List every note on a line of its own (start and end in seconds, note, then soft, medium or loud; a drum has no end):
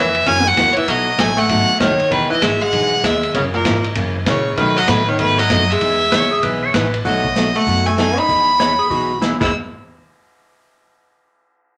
0.00 0.25 F2 medium
0.00 0.27 E3 medium
0.00 0.29 E5 loud
0.15 ride soft
0.26 0.56 F#2 medium
0.26 0.47 C#3 medium
0.26 0.47 E3 medium
0.26 0.47 A#3 medium
0.26 0.46 C#4 medium
0.26 0.47 C#4 medium
0.26 0.47 F#4 medium
0.26 0.49 G#5 loud
0.26 kick soft
0.26 ride medium
0.46 0.71 F#3 medium
0.46 0.74 F#5 loud
0.57 0.75 E2 medium
0.57 0.68 C#3 medium
0.57 0.69 E3 medium
0.57 0.69 A#3 medium
0.57 0.69 C#4 medium
0.57 0.69 F#4 medium
0.57 kick soft
0.57 snare medium
0.57 hi-hat pedal medium
0.57 ride medium
0.71 0.76 E3 medium
0.71 0.79 C#5 medium
0.76 0.88 E3 medium
0.76 0.91 E5 loud
0.76 muted upright bass stroke soft
0.76 ride soft
0.87 1.18 B1 medium
0.87 1.08 B2 medium
0.87 1.08 F#3 medium
0.87 1.18 F#3 medium
0.87 1.09 A3 medium
0.87 1.09 D#4 medium
0.87 1.09 F#4 medium
0.87 1.21 D#5 loud
0.87 kick soft
0.87 ride medium
1.18 1.48 A1 medium
1.18 1.30 B2 medium
1.18 1.30 F#3 medium
1.18 1.36 A3 medium
1.18 1.30 A3 medium
1.18 1.30 D#4 medium
1.18 1.30 F#4 medium
1.18 1.40 G#5 loud
1.18 kick soft
1.18 snare medium
1.18 hi-hat pedal medium
1.18 ride medium
1.37 1.80 A3 medium
1.37 1.80 F#5 loud
1.37 ride soft
1.49 1.67 G#1 medium
1.49 1.70 B2 medium
1.49 1.70 F#3 medium
1.49 1.70 A3 medium
1.49 1.70 D#4 medium
1.49 1.70 F#4 medium
1.49 kick soft
1.49 ride medium
1.80 1.98 F#1 medium
1.80 1.91 B2 medium
1.80 2.09 D#3 medium
1.80 1.91 F#3 medium
1.80 1.92 A3 medium
1.80 1.92 D#4 medium
1.80 1.92 F#4 medium
1.80 2.13 C#5 medium
1.80 kick soft
1.80 snare medium
1.80 hi-hat pedal medium
1.80 ride medium
2.00 muted upright bass stroke soft
2.00 ride soft
2.11 2.29 E1 medium
2.11 2.30 D#3 medium
2.11 2.32 E3 medium
2.11 2.32 G#3 medium
2.11 2.32 B3 medium
2.11 2.32 D#4 medium
2.11 2.32 G#4 medium
2.11 2.30 B4 medium
2.11 kick soft
2.11 ride medium
2.30 2.42 E3 medium
2.30 2.43 D#5 medium
2.30 muted upright bass stroke soft
2.42 2.72 G#1 medium
2.42 2.53 E3 medium
2.42 2.60 G#3 medium
2.42 2.53 G#3 medium
2.42 2.53 B3 medium
2.42 2.54 D#4 medium
2.42 2.54 G#4 medium
2.42 2.63 E5 loud
2.42 kick soft
2.42 snare medium
2.42 hi-hat pedal medium
2.42 ride medium
2.61 3.03 G#3 medium
2.61 3.06 F#5 loud
2.73 3.03 B1 medium
2.73 2.93 E3 medium
2.73 2.94 G#3 medium
2.73 2.94 B3 medium
2.73 2.94 D#4 medium
2.73 2.94 G#4 medium
2.73 kick soft
2.73 ride medium
3.03 3.33 D#2 medium
3.03 3.15 E3 medium
3.03 3.15 G#3 medium
3.03 3.35 G#3 medium
3.03 3.15 B3 medium
3.03 3.15 D#4 medium
3.03 3.15 G#4 medium
3.03 3.34 E5 medium
3.03 kick soft
3.03 snare medium
3.03 hi-hat pedal medium
3.03 ride medium
3.23 ride soft
3.34 3.64 F#2 medium
3.34 3.55 C#3 medium
3.34 3.41 C#3 medium
3.34 3.55 E3 medium
3.34 3.55 A#3 medium
3.34 3.55 C#4 medium
3.34 3.56 F#4 medium
3.34 3.43 C#5 medium
3.34 kick soft
3.34 ride medium
3.54 3.83 A#2 medium
3.54 3.82 A#4 medium
3.65 3.95 G#2 medium
3.65 3.76 C#3 medium
3.65 3.77 E3 medium
3.65 3.77 A#3 medium
3.65 3.77 C#4 medium
3.65 3.77 F#4 medium
3.65 kick soft
3.65 snare medium
3.65 hi-hat pedal medium
3.65 ride medium
3.84 ride soft
3.95 4.26 F#2 medium
3.95 4.16 C#3 medium
3.95 4.16 E3 medium
3.95 4.17 A#3 medium
3.95 4.17 C#4 medium
3.95 4.17 F#4 medium
3.95 kick soft
3.95 ride medium
4.26 4.56 A#2 medium
4.26 4.38 C#3 medium
4.26 4.56 C#3 medium
4.26 4.38 E3 medium
4.26 4.38 A#3 medium
4.26 4.38 C#4 medium
4.26 4.38 F#4 medium
4.26 4.55 C#5 medium
4.26 kick soft
4.26 snare medium
4.26 hi-hat pedal medium
4.26 ride medium
4.57 4.87 B2 medium
4.57 4.78 B2 medium
4.57 4.78 D#3 medium
4.57 4.78 F#3 medium
4.57 4.78 A3 medium
4.57 4.79 D#4 medium
4.57 4.79 F#4 medium
4.57 4.78 B4 medium
4.57 kick soft
4.57 ride medium
4.77 4.90 F#3 medium
4.77 4.90 D#5 medium
4.88 5.18 A2 medium
4.88 5.00 B2 medium
4.88 5.07 D#3 medium
4.88 5.00 F#3 medium
4.88 5.00 A3 medium
4.88 5.00 D#4 medium
4.88 5.00 F#4 medium
4.88 5.10 B4 medium
4.88 kick soft
4.88 snare medium
4.88 hi-hat pedal medium
4.88 ride medium
5.08 5.19 D#3 medium
5.08 5.19 C#5 medium
5.19 5.49 G#2 medium
5.19 5.40 B2 medium
5.19 5.39 D#3 medium
5.19 5.40 F#3 medium
5.19 5.40 A3 medium
5.19 5.40 D#4 medium
5.19 5.40 F#4 medium
5.19 5.40 B4 loud
5.19 kick soft
5.19 ride medium
5.38 5.72 F#3 medium
5.38 5.72 D#5 loud
5.50 5.80 F#2 medium
5.50 5.62 B2 medium
5.50 5.62 F#3 medium
5.50 5.62 A3 medium
5.50 5.62 D#4 medium
5.50 5.62 F#4 medium
5.50 kick soft
5.50 snare medium
5.50 hi-hat pedal medium
5.50 ride medium
5.70 6.75 G#3 medium
5.70 6.74 E5 loud
5.81 6.11 E2 medium
5.81 6.02 E3 medium
5.81 6.02 G#3 medium
5.81 6.02 B3 medium
5.81 6.02 D#4 medium
5.81 6.02 G#4 medium
5.81 kick soft
5.81 ride medium
6.12 6.42 C#2 medium
6.12 6.24 E3 medium
6.12 6.24 G#3 medium
6.12 6.24 B3 medium
6.12 6.24 D#4 medium
6.12 6.24 G#4 medium
6.12 6.31 C#5 loud
6.12 kick soft
6.12 snare medium
6.12 hi-hat pedal medium
6.12 ride medium
6.31 6.43 G#4 medium
6.43 6.73 B1 medium
6.43 6.64 E3 medium
6.43 6.64 G#3 medium
6.43 6.64 B3 medium
6.43 6.64 D#4 medium
6.43 6.64 G#4 medium
6.43 6.62 B4 medium
6.43 kick soft
6.43 ride medium
6.63 6.74 C#5 medium
6.74 7.04 A1 medium
6.74 6.85 E3 medium
6.74 6.86 G#3 medium
6.74 6.86 B3 medium
6.74 6.86 D#4 medium
6.74 6.86 G#4 medium
6.74 6.98 B4 loud
6.74 kick soft
6.74 snare medium
6.74 hi-hat pedal medium
6.74 ride medium
6.94 ride soft
7.05 7.54 B1 medium
7.05 7.25 B2 medium
7.05 7.52 F#3 medium
7.05 7.26 F#3 medium
7.05 7.26 A3 medium
7.05 7.26 D#4 medium
7.05 7.26 F#4 medium
7.05 7.57 D#5 medium
7.05 kick soft
7.05 open hi-hat soft
7.24 kick soft
7.36 7.47 B2 medium
7.36 7.47 F#3 medium
7.36 7.47 A3 medium
7.36 7.47 D#4 medium
7.36 7.48 F#4 medium
7.36 snare medium
7.36 closed hi-hat medium
7.55 7.85 A3 medium
7.55 7.88 F#5 loud
7.55 open hi-hat soft
7.67 8.16 F#2 medium
7.67 7.87 B2 medium
7.67 7.88 F#3 medium
7.67 7.88 A3 medium
7.67 7.88 D#4 medium
7.67 7.88 F#4 medium
7.67 kick soft
7.67 open hi-hat soft
7.86 7.97 A3 medium
7.86 7.97 G#5 medium
7.98 8.09 B2 medium
7.98 8.09 F#3 medium
7.98 8.09 A3 medium
7.98 8.18 A3 medium
7.98 8.10 D#4 medium
7.98 8.10 F#4 medium
7.98 8.20 G#5 loud
7.98 snare medium
7.98 closed hi-hat medium
8.17 9.22 D#4 medium
8.17 9.22 B5 loud
8.17 open hi-hat soft
8.28 8.78 E2 medium
8.28 8.49 E3 medium
8.28 8.49 G#3 medium
8.28 8.49 B3 medium
8.28 8.50 D#4 medium
8.28 8.50 G#4 medium
8.28 kick soft
8.28 open hi-hat soft
8.59 8.71 E3 medium
8.59 8.71 G#3 medium
8.59 8.71 B3 medium
8.59 8.71 D#4 medium
8.59 8.71 G#4 medium
8.59 8.79 C#5 medium
8.59 snare medium
8.59 closed hi-hat medium
8.79 8.90 G#4 medium
8.79 open hi-hat soft
8.90 9.31 B1 medium
8.90 9.11 E3 medium
8.90 9.11 G#3 medium
8.90 9.11 B3 medium
8.90 9.11 D#4 medium
8.90 9.20 F#4 medium
8.90 9.11 G#4 medium
8.90 kick soft
8.90 open hi-hat soft
9.21 9.33 E3 medium
9.21 9.33 G#3 medium
9.21 9.33 B3 medium
9.21 9.33 D#4 medium
9.21 9.39 E4 medium
9.21 9.33 G#4 medium
9.21 snare medium
9.21 closed hi-hat medium
9.40 9.52 E2 medium
9.40 9.50 E3 medium
9.40 9.50 G#3 medium
9.40 9.52 G#3 medium
9.40 9.50 B3 medium
9.40 9.51 D#4 medium
9.40 9.51 E4 medium
9.40 9.51 G#4 medium
9.40 9.52 E6 medium
9.40 kick medium
9.40 snare medium
9.40 crash medium